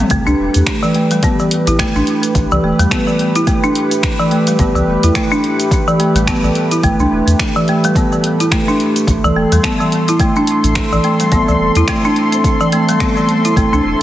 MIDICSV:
0, 0, Header, 1, 6, 480
1, 0, Start_track
1, 0, Key_signature, 0, "minor"
1, 0, Tempo, 560748
1, 92, Time_signature, 4, 2, 24, 8
1, 12005, End_track
2, 0, Start_track
2, 0, Title_t, "Synth texture"
2, 0, Program_c, 0, 99
2, 7764, Note_on_c, 0, 60, 81
2, 7768, Note_on_c, 0, 84, 87
2, 12005, Note_off_c, 0, 60, 0
2, 12005, Note_off_c, 0, 84, 0
2, 12005, End_track
3, 0, Start_track
3, 0, Title_t, "Analog synth pad"
3, 0, Program_c, 1, 89
3, 90, Note_on_c, 1, 57, 80
3, 92, Note_on_c, 1, 67, 73
3, 92, Note_on_c, 1, 71, 89
3, 7738, Note_off_c, 1, 67, 0
3, 7765, Note_off_c, 1, 71, 0
3, 7772, Note_on_c, 1, 69, 76
3, 7775, Note_on_c, 1, 84, 92
3, 12005, Note_off_c, 1, 57, 0
3, 12005, Note_off_c, 1, 69, 0
3, 12005, Note_off_c, 1, 84, 0
3, 12005, End_track
4, 0, Start_track
4, 0, Title_t, "Marimba"
4, 0, Program_c, 2, 12
4, 0, Note_on_c, 2, 55, 69
4, 88, Note_off_c, 2, 55, 0
4, 95, Note_on_c, 2, 57, 91
4, 224, Note_off_c, 2, 57, 0
4, 228, Note_on_c, 2, 62, 99
4, 695, Note_off_c, 2, 62, 0
4, 707, Note_on_c, 2, 52, 98
4, 801, Note_off_c, 2, 52, 0
4, 816, Note_on_c, 2, 57, 73
4, 937, Note_off_c, 2, 57, 0
4, 954, Note_on_c, 2, 55, 77
4, 1010, Note_off_c, 2, 55, 0
4, 1059, Note_on_c, 2, 59, 79
4, 1179, Note_off_c, 2, 59, 0
4, 1196, Note_on_c, 2, 52, 78
4, 1419, Note_off_c, 2, 52, 0
4, 1434, Note_on_c, 2, 64, 71
4, 1524, Note_off_c, 2, 64, 0
4, 1537, Note_on_c, 2, 57, 99
4, 1665, Note_off_c, 2, 57, 0
4, 1678, Note_on_c, 2, 62, 96
4, 2140, Note_off_c, 2, 62, 0
4, 2155, Note_on_c, 2, 52, 101
4, 2245, Note_off_c, 2, 52, 0
4, 2258, Note_on_c, 2, 57, 79
4, 2378, Note_off_c, 2, 57, 0
4, 2392, Note_on_c, 2, 55, 84
4, 2449, Note_off_c, 2, 55, 0
4, 2495, Note_on_c, 2, 59, 79
4, 2617, Note_off_c, 2, 59, 0
4, 2632, Note_on_c, 2, 52, 72
4, 2857, Note_off_c, 2, 52, 0
4, 2874, Note_on_c, 2, 64, 78
4, 2964, Note_off_c, 2, 64, 0
4, 2973, Note_on_c, 2, 57, 97
4, 3103, Note_off_c, 2, 57, 0
4, 3113, Note_on_c, 2, 62, 104
4, 3577, Note_off_c, 2, 62, 0
4, 3591, Note_on_c, 2, 52, 96
4, 3683, Note_off_c, 2, 52, 0
4, 3695, Note_on_c, 2, 57, 75
4, 3817, Note_off_c, 2, 57, 0
4, 3833, Note_on_c, 2, 55, 75
4, 3889, Note_off_c, 2, 55, 0
4, 3936, Note_on_c, 2, 59, 77
4, 4058, Note_off_c, 2, 59, 0
4, 4071, Note_on_c, 2, 52, 71
4, 4297, Note_off_c, 2, 52, 0
4, 4313, Note_on_c, 2, 64, 79
4, 4403, Note_off_c, 2, 64, 0
4, 4415, Note_on_c, 2, 57, 95
4, 4544, Note_off_c, 2, 57, 0
4, 4551, Note_on_c, 2, 62, 101
4, 5016, Note_off_c, 2, 62, 0
4, 5029, Note_on_c, 2, 52, 108
4, 5122, Note_off_c, 2, 52, 0
4, 5132, Note_on_c, 2, 57, 80
4, 5255, Note_off_c, 2, 57, 0
4, 5272, Note_on_c, 2, 55, 67
4, 5329, Note_off_c, 2, 55, 0
4, 5374, Note_on_c, 2, 59, 83
4, 5496, Note_off_c, 2, 59, 0
4, 5513, Note_on_c, 2, 52, 73
4, 5737, Note_off_c, 2, 52, 0
4, 5749, Note_on_c, 2, 64, 66
4, 5842, Note_off_c, 2, 64, 0
4, 5855, Note_on_c, 2, 57, 103
4, 5984, Note_off_c, 2, 57, 0
4, 5994, Note_on_c, 2, 62, 95
4, 6458, Note_off_c, 2, 62, 0
4, 6472, Note_on_c, 2, 52, 101
4, 6563, Note_off_c, 2, 52, 0
4, 6581, Note_on_c, 2, 57, 80
4, 6700, Note_off_c, 2, 57, 0
4, 6717, Note_on_c, 2, 55, 77
4, 6772, Note_off_c, 2, 55, 0
4, 6819, Note_on_c, 2, 59, 80
4, 6939, Note_off_c, 2, 59, 0
4, 6955, Note_on_c, 2, 52, 73
4, 7179, Note_off_c, 2, 52, 0
4, 7195, Note_on_c, 2, 64, 68
4, 7285, Note_off_c, 2, 64, 0
4, 7296, Note_on_c, 2, 57, 96
4, 7424, Note_off_c, 2, 57, 0
4, 7432, Note_on_c, 2, 62, 91
4, 7897, Note_off_c, 2, 62, 0
4, 7912, Note_on_c, 2, 52, 95
4, 8003, Note_off_c, 2, 52, 0
4, 8017, Note_on_c, 2, 57, 86
4, 8138, Note_off_c, 2, 57, 0
4, 8152, Note_on_c, 2, 55, 79
4, 8209, Note_off_c, 2, 55, 0
4, 8254, Note_on_c, 2, 59, 78
4, 8376, Note_off_c, 2, 59, 0
4, 8393, Note_on_c, 2, 52, 75
4, 8618, Note_off_c, 2, 52, 0
4, 8634, Note_on_c, 2, 64, 74
4, 8724, Note_off_c, 2, 64, 0
4, 8738, Note_on_c, 2, 57, 94
4, 8865, Note_off_c, 2, 57, 0
4, 8874, Note_on_c, 2, 62, 100
4, 9338, Note_off_c, 2, 62, 0
4, 9353, Note_on_c, 2, 52, 95
4, 9444, Note_off_c, 2, 52, 0
4, 9453, Note_on_c, 2, 57, 78
4, 9576, Note_off_c, 2, 57, 0
4, 9591, Note_on_c, 2, 55, 69
4, 9649, Note_off_c, 2, 55, 0
4, 9692, Note_on_c, 2, 59, 76
4, 9816, Note_off_c, 2, 59, 0
4, 9833, Note_on_c, 2, 52, 77
4, 10057, Note_off_c, 2, 52, 0
4, 10073, Note_on_c, 2, 64, 79
4, 10164, Note_off_c, 2, 64, 0
4, 10176, Note_on_c, 2, 57, 98
4, 10305, Note_off_c, 2, 57, 0
4, 10315, Note_on_c, 2, 62, 101
4, 10778, Note_off_c, 2, 62, 0
4, 10794, Note_on_c, 2, 52, 99
4, 10884, Note_off_c, 2, 52, 0
4, 10895, Note_on_c, 2, 57, 84
4, 11017, Note_off_c, 2, 57, 0
4, 11033, Note_on_c, 2, 55, 73
4, 11090, Note_off_c, 2, 55, 0
4, 11136, Note_on_c, 2, 59, 83
4, 11258, Note_off_c, 2, 59, 0
4, 11273, Note_on_c, 2, 52, 72
4, 11498, Note_off_c, 2, 52, 0
4, 11514, Note_on_c, 2, 64, 65
4, 11604, Note_off_c, 2, 64, 0
4, 11616, Note_on_c, 2, 57, 98
4, 11744, Note_off_c, 2, 57, 0
4, 11753, Note_on_c, 2, 62, 94
4, 12005, Note_off_c, 2, 62, 0
4, 12005, End_track
5, 0, Start_track
5, 0, Title_t, "Sub bass"
5, 0, Program_c, 3, 38
5, 93, Note_on_c, 3, 33, 103
5, 176, Note_off_c, 3, 33, 0
5, 230, Note_on_c, 3, 36, 88
5, 292, Note_off_c, 3, 36, 0
5, 337, Note_on_c, 3, 28, 86
5, 418, Note_off_c, 3, 28, 0
5, 475, Note_on_c, 3, 40, 87
5, 535, Note_off_c, 3, 40, 0
5, 1432, Note_on_c, 3, 33, 94
5, 1563, Note_off_c, 3, 33, 0
5, 1671, Note_on_c, 3, 33, 95
5, 1733, Note_off_c, 3, 33, 0
5, 2011, Note_on_c, 3, 33, 96
5, 2095, Note_off_c, 3, 33, 0
5, 2153, Note_on_c, 3, 36, 87
5, 2213, Note_off_c, 3, 36, 0
5, 2251, Note_on_c, 3, 28, 88
5, 2335, Note_off_c, 3, 28, 0
5, 2387, Note_on_c, 3, 40, 89
5, 2451, Note_off_c, 3, 40, 0
5, 3933, Note_on_c, 3, 33, 98
5, 4016, Note_off_c, 3, 33, 0
5, 4065, Note_on_c, 3, 36, 87
5, 4130, Note_off_c, 3, 36, 0
5, 4169, Note_on_c, 3, 28, 97
5, 4254, Note_off_c, 3, 28, 0
5, 4309, Note_on_c, 3, 40, 89
5, 4371, Note_off_c, 3, 40, 0
5, 5265, Note_on_c, 3, 33, 96
5, 5399, Note_off_c, 3, 33, 0
5, 5506, Note_on_c, 3, 33, 97
5, 5570, Note_off_c, 3, 33, 0
5, 5851, Note_on_c, 3, 33, 99
5, 5935, Note_off_c, 3, 33, 0
5, 5986, Note_on_c, 3, 36, 83
5, 6050, Note_off_c, 3, 36, 0
5, 6092, Note_on_c, 3, 28, 89
5, 6176, Note_off_c, 3, 28, 0
5, 6224, Note_on_c, 3, 40, 91
5, 6289, Note_off_c, 3, 40, 0
5, 7768, Note_on_c, 3, 33, 97
5, 7853, Note_off_c, 3, 33, 0
5, 7907, Note_on_c, 3, 36, 85
5, 7970, Note_off_c, 3, 36, 0
5, 8008, Note_on_c, 3, 28, 87
5, 8093, Note_off_c, 3, 28, 0
5, 8150, Note_on_c, 3, 40, 87
5, 8212, Note_off_c, 3, 40, 0
5, 9107, Note_on_c, 3, 33, 102
5, 9240, Note_off_c, 3, 33, 0
5, 9350, Note_on_c, 3, 33, 98
5, 9412, Note_off_c, 3, 33, 0
5, 9690, Note_on_c, 3, 33, 95
5, 9774, Note_off_c, 3, 33, 0
5, 9829, Note_on_c, 3, 36, 85
5, 9892, Note_off_c, 3, 36, 0
5, 9932, Note_on_c, 3, 28, 98
5, 10015, Note_off_c, 3, 28, 0
5, 10065, Note_on_c, 3, 40, 89
5, 10130, Note_off_c, 3, 40, 0
5, 11613, Note_on_c, 3, 33, 105
5, 11696, Note_off_c, 3, 33, 0
5, 11752, Note_on_c, 3, 36, 89
5, 11813, Note_off_c, 3, 36, 0
5, 11854, Note_on_c, 3, 28, 98
5, 11936, Note_off_c, 3, 28, 0
5, 12005, End_track
6, 0, Start_track
6, 0, Title_t, "Drums"
6, 86, Note_on_c, 9, 42, 52
6, 89, Note_on_c, 9, 69, 53
6, 91, Note_on_c, 9, 36, 104
6, 171, Note_off_c, 9, 42, 0
6, 175, Note_off_c, 9, 69, 0
6, 177, Note_off_c, 9, 36, 0
6, 229, Note_on_c, 9, 69, 35
6, 315, Note_off_c, 9, 69, 0
6, 465, Note_on_c, 9, 42, 46
6, 469, Note_on_c, 9, 69, 65
6, 551, Note_off_c, 9, 42, 0
6, 554, Note_off_c, 9, 69, 0
6, 569, Note_on_c, 9, 26, 107
6, 569, Note_on_c, 9, 42, 53
6, 571, Note_on_c, 9, 36, 102
6, 573, Note_on_c, 9, 69, 51
6, 655, Note_off_c, 9, 26, 0
6, 655, Note_off_c, 9, 42, 0
6, 657, Note_off_c, 9, 36, 0
6, 658, Note_off_c, 9, 69, 0
6, 711, Note_on_c, 9, 69, 33
6, 796, Note_off_c, 9, 69, 0
6, 809, Note_on_c, 9, 42, 31
6, 894, Note_off_c, 9, 42, 0
6, 948, Note_on_c, 9, 42, 42
6, 951, Note_on_c, 9, 69, 62
6, 1034, Note_off_c, 9, 42, 0
6, 1037, Note_off_c, 9, 69, 0
6, 1050, Note_on_c, 9, 42, 60
6, 1052, Note_on_c, 9, 36, 107
6, 1053, Note_on_c, 9, 69, 55
6, 1136, Note_off_c, 9, 42, 0
6, 1138, Note_off_c, 9, 36, 0
6, 1139, Note_off_c, 9, 69, 0
6, 1192, Note_on_c, 9, 69, 34
6, 1278, Note_off_c, 9, 69, 0
6, 1294, Note_on_c, 9, 42, 59
6, 1380, Note_off_c, 9, 42, 0
6, 1431, Note_on_c, 9, 42, 48
6, 1435, Note_on_c, 9, 69, 63
6, 1517, Note_off_c, 9, 42, 0
6, 1520, Note_off_c, 9, 69, 0
6, 1532, Note_on_c, 9, 36, 107
6, 1535, Note_on_c, 9, 26, 98
6, 1535, Note_on_c, 9, 42, 53
6, 1538, Note_on_c, 9, 69, 58
6, 1617, Note_off_c, 9, 36, 0
6, 1620, Note_off_c, 9, 26, 0
6, 1620, Note_off_c, 9, 42, 0
6, 1624, Note_off_c, 9, 69, 0
6, 1673, Note_on_c, 9, 69, 31
6, 1759, Note_off_c, 9, 69, 0
6, 1772, Note_on_c, 9, 42, 34
6, 1858, Note_off_c, 9, 42, 0
6, 1909, Note_on_c, 9, 42, 47
6, 1913, Note_on_c, 9, 69, 69
6, 1995, Note_off_c, 9, 42, 0
6, 1998, Note_off_c, 9, 69, 0
6, 2011, Note_on_c, 9, 36, 108
6, 2012, Note_on_c, 9, 42, 53
6, 2015, Note_on_c, 9, 69, 52
6, 2097, Note_off_c, 9, 36, 0
6, 2098, Note_off_c, 9, 42, 0
6, 2101, Note_off_c, 9, 69, 0
6, 2153, Note_on_c, 9, 69, 34
6, 2239, Note_off_c, 9, 69, 0
6, 2392, Note_on_c, 9, 42, 47
6, 2395, Note_on_c, 9, 69, 70
6, 2478, Note_off_c, 9, 42, 0
6, 2481, Note_off_c, 9, 69, 0
6, 2492, Note_on_c, 9, 36, 107
6, 2494, Note_on_c, 9, 26, 102
6, 2494, Note_on_c, 9, 42, 50
6, 2497, Note_on_c, 9, 69, 58
6, 2577, Note_off_c, 9, 36, 0
6, 2580, Note_off_c, 9, 26, 0
6, 2580, Note_off_c, 9, 42, 0
6, 2583, Note_off_c, 9, 69, 0
6, 2637, Note_on_c, 9, 69, 35
6, 2723, Note_off_c, 9, 69, 0
6, 2733, Note_on_c, 9, 42, 29
6, 2818, Note_off_c, 9, 42, 0
6, 2871, Note_on_c, 9, 42, 40
6, 2875, Note_on_c, 9, 69, 67
6, 2957, Note_off_c, 9, 42, 0
6, 2960, Note_off_c, 9, 69, 0
6, 2971, Note_on_c, 9, 36, 111
6, 2971, Note_on_c, 9, 42, 56
6, 2974, Note_on_c, 9, 69, 60
6, 3056, Note_off_c, 9, 36, 0
6, 3057, Note_off_c, 9, 42, 0
6, 3060, Note_off_c, 9, 69, 0
6, 3111, Note_on_c, 9, 69, 38
6, 3197, Note_off_c, 9, 69, 0
6, 3214, Note_on_c, 9, 42, 52
6, 3299, Note_off_c, 9, 42, 0
6, 3350, Note_on_c, 9, 42, 46
6, 3354, Note_on_c, 9, 69, 70
6, 3436, Note_off_c, 9, 42, 0
6, 3439, Note_off_c, 9, 69, 0
6, 3450, Note_on_c, 9, 36, 115
6, 3452, Note_on_c, 9, 26, 107
6, 3452, Note_on_c, 9, 42, 55
6, 3456, Note_on_c, 9, 69, 56
6, 3536, Note_off_c, 9, 36, 0
6, 3538, Note_off_c, 9, 26, 0
6, 3538, Note_off_c, 9, 42, 0
6, 3541, Note_off_c, 9, 69, 0
6, 3595, Note_on_c, 9, 69, 30
6, 3680, Note_off_c, 9, 69, 0
6, 3691, Note_on_c, 9, 42, 33
6, 3777, Note_off_c, 9, 42, 0
6, 3826, Note_on_c, 9, 42, 46
6, 3829, Note_on_c, 9, 69, 72
6, 3911, Note_off_c, 9, 42, 0
6, 3914, Note_off_c, 9, 69, 0
6, 3928, Note_on_c, 9, 42, 48
6, 3930, Note_on_c, 9, 36, 118
6, 3932, Note_on_c, 9, 69, 53
6, 4014, Note_off_c, 9, 42, 0
6, 4016, Note_off_c, 9, 36, 0
6, 4017, Note_off_c, 9, 69, 0
6, 4071, Note_on_c, 9, 69, 34
6, 4156, Note_off_c, 9, 69, 0
6, 4308, Note_on_c, 9, 42, 44
6, 4311, Note_on_c, 9, 69, 66
6, 4393, Note_off_c, 9, 42, 0
6, 4397, Note_off_c, 9, 69, 0
6, 4410, Note_on_c, 9, 26, 100
6, 4410, Note_on_c, 9, 36, 102
6, 4410, Note_on_c, 9, 42, 53
6, 4413, Note_on_c, 9, 69, 56
6, 4495, Note_off_c, 9, 26, 0
6, 4495, Note_off_c, 9, 42, 0
6, 4496, Note_off_c, 9, 36, 0
6, 4499, Note_off_c, 9, 69, 0
6, 4555, Note_on_c, 9, 69, 34
6, 4640, Note_off_c, 9, 69, 0
6, 4655, Note_on_c, 9, 42, 31
6, 4741, Note_off_c, 9, 42, 0
6, 4790, Note_on_c, 9, 42, 43
6, 4793, Note_on_c, 9, 69, 67
6, 4875, Note_off_c, 9, 42, 0
6, 4879, Note_off_c, 9, 69, 0
6, 4890, Note_on_c, 9, 36, 117
6, 4893, Note_on_c, 9, 42, 55
6, 4896, Note_on_c, 9, 69, 60
6, 4975, Note_off_c, 9, 36, 0
6, 4979, Note_off_c, 9, 42, 0
6, 4982, Note_off_c, 9, 69, 0
6, 5031, Note_on_c, 9, 69, 38
6, 5117, Note_off_c, 9, 69, 0
6, 5134, Note_on_c, 9, 42, 53
6, 5219, Note_off_c, 9, 42, 0
6, 5270, Note_on_c, 9, 42, 40
6, 5274, Note_on_c, 9, 69, 65
6, 5356, Note_off_c, 9, 42, 0
6, 5359, Note_off_c, 9, 69, 0
6, 5370, Note_on_c, 9, 36, 115
6, 5371, Note_on_c, 9, 26, 104
6, 5371, Note_on_c, 9, 42, 54
6, 5375, Note_on_c, 9, 69, 60
6, 5455, Note_off_c, 9, 36, 0
6, 5457, Note_off_c, 9, 26, 0
6, 5457, Note_off_c, 9, 42, 0
6, 5460, Note_off_c, 9, 69, 0
6, 5513, Note_on_c, 9, 69, 33
6, 5599, Note_off_c, 9, 69, 0
6, 5610, Note_on_c, 9, 42, 31
6, 5695, Note_off_c, 9, 42, 0
6, 5747, Note_on_c, 9, 42, 43
6, 5751, Note_on_c, 9, 69, 69
6, 5833, Note_off_c, 9, 42, 0
6, 5836, Note_off_c, 9, 69, 0
6, 5850, Note_on_c, 9, 36, 115
6, 5850, Note_on_c, 9, 42, 53
6, 5854, Note_on_c, 9, 69, 57
6, 5936, Note_off_c, 9, 36, 0
6, 5936, Note_off_c, 9, 42, 0
6, 5939, Note_off_c, 9, 69, 0
6, 5989, Note_on_c, 9, 69, 36
6, 6075, Note_off_c, 9, 69, 0
6, 6228, Note_on_c, 9, 42, 45
6, 6232, Note_on_c, 9, 69, 68
6, 6314, Note_off_c, 9, 42, 0
6, 6317, Note_off_c, 9, 69, 0
6, 6330, Note_on_c, 9, 26, 98
6, 6330, Note_on_c, 9, 36, 109
6, 6330, Note_on_c, 9, 42, 50
6, 6333, Note_on_c, 9, 69, 54
6, 6415, Note_off_c, 9, 26, 0
6, 6415, Note_off_c, 9, 36, 0
6, 6415, Note_off_c, 9, 42, 0
6, 6419, Note_off_c, 9, 69, 0
6, 6471, Note_on_c, 9, 69, 34
6, 6557, Note_off_c, 9, 69, 0
6, 6573, Note_on_c, 9, 42, 29
6, 6659, Note_off_c, 9, 42, 0
6, 6711, Note_on_c, 9, 42, 40
6, 6714, Note_on_c, 9, 69, 70
6, 6796, Note_off_c, 9, 42, 0
6, 6799, Note_off_c, 9, 69, 0
6, 6809, Note_on_c, 9, 36, 108
6, 6813, Note_on_c, 9, 42, 52
6, 6816, Note_on_c, 9, 69, 58
6, 6895, Note_off_c, 9, 36, 0
6, 6898, Note_off_c, 9, 42, 0
6, 6902, Note_off_c, 9, 69, 0
6, 6953, Note_on_c, 9, 69, 37
6, 7039, Note_off_c, 9, 69, 0
6, 7052, Note_on_c, 9, 42, 52
6, 7137, Note_off_c, 9, 42, 0
6, 7193, Note_on_c, 9, 42, 39
6, 7196, Note_on_c, 9, 69, 67
6, 7278, Note_off_c, 9, 42, 0
6, 7281, Note_off_c, 9, 69, 0
6, 7289, Note_on_c, 9, 36, 111
6, 7291, Note_on_c, 9, 26, 99
6, 7291, Note_on_c, 9, 42, 52
6, 7294, Note_on_c, 9, 69, 58
6, 7374, Note_off_c, 9, 36, 0
6, 7376, Note_off_c, 9, 26, 0
6, 7376, Note_off_c, 9, 42, 0
6, 7380, Note_off_c, 9, 69, 0
6, 7434, Note_on_c, 9, 69, 31
6, 7520, Note_off_c, 9, 69, 0
6, 7533, Note_on_c, 9, 42, 28
6, 7618, Note_off_c, 9, 42, 0
6, 7670, Note_on_c, 9, 42, 43
6, 7674, Note_on_c, 9, 69, 73
6, 7756, Note_off_c, 9, 42, 0
6, 7759, Note_off_c, 9, 69, 0
6, 7768, Note_on_c, 9, 36, 105
6, 7771, Note_on_c, 9, 42, 50
6, 7774, Note_on_c, 9, 69, 53
6, 7854, Note_off_c, 9, 36, 0
6, 7856, Note_off_c, 9, 42, 0
6, 7860, Note_off_c, 9, 69, 0
6, 7913, Note_on_c, 9, 69, 33
6, 7999, Note_off_c, 9, 69, 0
6, 8149, Note_on_c, 9, 42, 44
6, 8153, Note_on_c, 9, 69, 66
6, 8235, Note_off_c, 9, 42, 0
6, 8238, Note_off_c, 9, 69, 0
6, 8248, Note_on_c, 9, 36, 106
6, 8251, Note_on_c, 9, 26, 99
6, 8251, Note_on_c, 9, 42, 52
6, 8255, Note_on_c, 9, 69, 53
6, 8333, Note_off_c, 9, 36, 0
6, 8337, Note_off_c, 9, 26, 0
6, 8337, Note_off_c, 9, 42, 0
6, 8340, Note_off_c, 9, 69, 0
6, 8392, Note_on_c, 9, 69, 33
6, 8478, Note_off_c, 9, 69, 0
6, 8493, Note_on_c, 9, 42, 30
6, 8579, Note_off_c, 9, 42, 0
6, 8630, Note_on_c, 9, 42, 42
6, 8633, Note_on_c, 9, 69, 62
6, 8715, Note_off_c, 9, 42, 0
6, 8719, Note_off_c, 9, 69, 0
6, 8727, Note_on_c, 9, 36, 110
6, 8727, Note_on_c, 9, 42, 56
6, 8731, Note_on_c, 9, 69, 60
6, 8813, Note_off_c, 9, 36, 0
6, 8813, Note_off_c, 9, 42, 0
6, 8816, Note_off_c, 9, 69, 0
6, 8868, Note_on_c, 9, 69, 35
6, 8954, Note_off_c, 9, 69, 0
6, 8965, Note_on_c, 9, 42, 52
6, 9051, Note_off_c, 9, 42, 0
6, 9108, Note_on_c, 9, 42, 42
6, 9111, Note_on_c, 9, 69, 62
6, 9193, Note_off_c, 9, 42, 0
6, 9197, Note_off_c, 9, 69, 0
6, 9205, Note_on_c, 9, 26, 94
6, 9205, Note_on_c, 9, 42, 55
6, 9208, Note_on_c, 9, 36, 106
6, 9209, Note_on_c, 9, 69, 57
6, 9291, Note_off_c, 9, 26, 0
6, 9291, Note_off_c, 9, 42, 0
6, 9294, Note_off_c, 9, 36, 0
6, 9294, Note_off_c, 9, 69, 0
6, 9349, Note_on_c, 9, 69, 33
6, 9435, Note_off_c, 9, 69, 0
6, 9449, Note_on_c, 9, 42, 31
6, 9535, Note_off_c, 9, 42, 0
6, 9585, Note_on_c, 9, 42, 41
6, 9588, Note_on_c, 9, 69, 67
6, 9670, Note_off_c, 9, 42, 0
6, 9674, Note_off_c, 9, 69, 0
6, 9687, Note_on_c, 9, 42, 54
6, 9688, Note_on_c, 9, 36, 108
6, 9691, Note_on_c, 9, 69, 48
6, 9773, Note_off_c, 9, 42, 0
6, 9774, Note_off_c, 9, 36, 0
6, 9776, Note_off_c, 9, 69, 0
6, 9829, Note_on_c, 9, 69, 33
6, 9914, Note_off_c, 9, 69, 0
6, 10061, Note_on_c, 9, 42, 44
6, 10065, Note_on_c, 9, 69, 65
6, 10147, Note_off_c, 9, 42, 0
6, 10150, Note_off_c, 9, 69, 0
6, 10166, Note_on_c, 9, 26, 96
6, 10166, Note_on_c, 9, 42, 52
6, 10169, Note_on_c, 9, 69, 54
6, 10170, Note_on_c, 9, 36, 100
6, 10252, Note_off_c, 9, 26, 0
6, 10252, Note_off_c, 9, 42, 0
6, 10255, Note_off_c, 9, 36, 0
6, 10255, Note_off_c, 9, 69, 0
6, 10310, Note_on_c, 9, 69, 33
6, 10396, Note_off_c, 9, 69, 0
6, 10411, Note_on_c, 9, 42, 29
6, 10496, Note_off_c, 9, 42, 0
6, 10549, Note_on_c, 9, 42, 41
6, 10553, Note_on_c, 9, 69, 61
6, 10635, Note_off_c, 9, 42, 0
6, 10638, Note_off_c, 9, 69, 0
6, 10650, Note_on_c, 9, 36, 108
6, 10652, Note_on_c, 9, 42, 56
6, 10656, Note_on_c, 9, 69, 53
6, 10735, Note_off_c, 9, 36, 0
6, 10738, Note_off_c, 9, 42, 0
6, 10741, Note_off_c, 9, 69, 0
6, 10789, Note_on_c, 9, 69, 35
6, 10875, Note_off_c, 9, 69, 0
6, 10891, Note_on_c, 9, 42, 55
6, 10977, Note_off_c, 9, 42, 0
6, 11030, Note_on_c, 9, 42, 44
6, 11034, Note_on_c, 9, 69, 64
6, 11116, Note_off_c, 9, 42, 0
6, 11119, Note_off_c, 9, 69, 0
6, 11130, Note_on_c, 9, 36, 100
6, 11131, Note_on_c, 9, 26, 89
6, 11131, Note_on_c, 9, 42, 56
6, 11134, Note_on_c, 9, 69, 55
6, 11216, Note_off_c, 9, 36, 0
6, 11217, Note_off_c, 9, 26, 0
6, 11217, Note_off_c, 9, 42, 0
6, 11220, Note_off_c, 9, 69, 0
6, 11270, Note_on_c, 9, 69, 30
6, 11356, Note_off_c, 9, 69, 0
6, 11373, Note_on_c, 9, 42, 31
6, 11459, Note_off_c, 9, 42, 0
6, 11512, Note_on_c, 9, 42, 43
6, 11516, Note_on_c, 9, 69, 65
6, 11598, Note_off_c, 9, 42, 0
6, 11601, Note_off_c, 9, 69, 0
6, 11611, Note_on_c, 9, 36, 108
6, 11616, Note_on_c, 9, 42, 54
6, 11619, Note_on_c, 9, 69, 49
6, 11696, Note_off_c, 9, 36, 0
6, 11702, Note_off_c, 9, 42, 0
6, 11705, Note_off_c, 9, 69, 0
6, 11757, Note_on_c, 9, 69, 34
6, 11843, Note_off_c, 9, 69, 0
6, 12005, End_track
0, 0, End_of_file